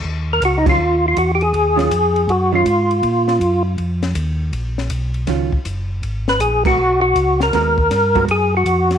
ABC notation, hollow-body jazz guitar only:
X:1
M:4/4
L:1/8
Q:"Swing" 1/4=160
K:Ebm
V:1 name="Hollow-body jazz guitar"
z3 [E,G,DF] z4 | z [E,G,DF] z3 [E,G,DF] z2 | z8 | z4 [E,G,DF] z3 |
z3 [A,CGB] z4 | [A,CGB] z2 [A,CGB] z4 |]